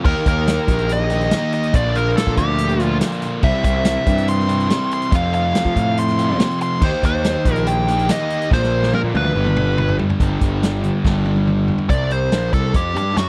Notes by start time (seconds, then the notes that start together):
0.04 D#2 D#3 A#3 D#4 G4 A#4, kick, crash
0.08 D#4
0.26 D#2 A#4, kick, closed hi-hat
0.47 snare, closed hi-hat
0.68 A#1 D#3 A#3 D#4, kick, closed hi-hat
0.79 closed hi-hat
0.89 D#5, closed hi-hat
1.10 D#3 A#3 D#4 G4, closed hi-hat
1.21 closed hi-hat
1.31 D#3 A#3 D#4 G4, snare, closed hi-hat
1.52 D#5, closed hi-hat
1.63 closed hi-hat
1.74 A#1 A#2 D3 F3 A#3 D4 F4 D5, kick, closed hi-hat
1.95 A#4, closed hi-hat
2.17 A4, snare, closed hi-hat
2.27 A#2, kick
2.36 D2 F3 A#3 G4, kick, closed hi-hat
2.40 A#2
2.58 closed hi-hat
2.69 closed hi-hat
2.79 A#2 D3 A#3 D4 F4, closed hi-hat
3.00 A#2 D3 A#3 D4 F4, snare, closed hi-hat
3.12 closed hi-hat
3.22 closed hi-hat
3.42 C2 C3 E3 G3 C4 E4 E5, kick, crash
3.47 C4
3.64 C2 E5, kick, closed hi-hat
3.85 snare, closed hi-hat
4.06 G2 C3 G3 C4, kick, closed hi-hat
4.18 closed hi-hat
4.28 C6, closed hi-hat
4.39 snare
4.47 C3 E3 G3 C4 E4, closed hi-hat
4.60 closed hi-hat
4.69 C3 E3 G3 C4 E4, snare, closed hi-hat
4.91 C6, closed hi-hat
5.02 closed hi-hat
5.11 F2 C3 F3 A3 C4 F4, kick, closed hi-hat
5.15 F3 F5
5.33 F5, closed hi-hat
5.55 snare, closed hi-hat
5.65 F3, kick
5.76 F2 A2 C3 F3, kick, closed hi-hat
5.97 C6, closed hi-hat
6.08 snare, closed hi-hat
6.18 F2 C3 F3 A3 C4 F4, closed hi-hat
6.39 F2 C3 F3 A3 C4 F4, snare, closed hi-hat
6.51 closed hi-hat
6.61 C6, closed hi-hat
6.81 D#2 D#3 A#3 D#4 G4 C5, kick, crash
6.85 D#4
7.03 D#2 C5, kick, closed hi-hat
7.24 snare, closed hi-hat
7.45 A#1 D#3 A#3 D#4, kick, closed hi-hat
7.54 A#4, closed hi-hat
7.67 G5, closed hi-hat
7.88 D#3 A#3 D#4 G4, closed hi-hat
7.99 closed hi-hat
8.07 D#3 A#3 D#4 G4 D#5, snare, closed hi-hat
8.30 closed hi-hat
8.41 closed hi-hat
8.50 A#1 A#2 D3 F3 A#3 D4 F4 C5, kick, snare
8.55 A#3
8.63 snare
8.83 snare
8.93 A#4, high tom
9.04 A#2
9.14 D2 A#2 F3 A#3 B4, high tom
9.24 mid tom
9.35 G1 G2 D3 G3 B3 D4 G4
9.39 G3
9.46 mid tom
9.57 mid tom
9.78 mid tom
9.89 floor tom
9.98 D3 G3, floor tom
10.02 G2
10.10 floor tom
10.19 G1 G2 D3 G3 B3 D4 G4, kick, closed hi-hat
10.41 G1, kick, closed hi-hat
10.63 snare, closed hi-hat
10.82 D3 G3, closed hi-hat
10.87 G2
11.04 G1 G2 D3 G3 B3 D4 G4, kick, snare
11.25 high tom
11.36 high tom
11.47 mid tom
11.68 floor tom
11.78 floor tom
11.89 C2 C3 G3 C4 D5, kick, closed hi-hat
12.11 C5, closed hi-hat
12.32 A#1 A#2 F3 A#3, snare, closed hi-hat
12.53 C2 C3 G3 C4 A4, kick, closed hi-hat
12.73 F2 F3 C4 F4 G4, kick, closed hi-hat
12.94 G2 G3 D4 G4, closed hi-hat
13.16 F#2 F#3 C#4 F#4, snare, closed hi-hat